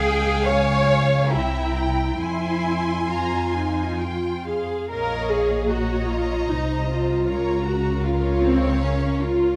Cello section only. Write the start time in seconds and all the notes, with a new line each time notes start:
Already playing: G#4
0.45 C#5
1.31 E4
2.17 E4
3.08 F4
4.91 A#2
6.51 C3
7.27 C#3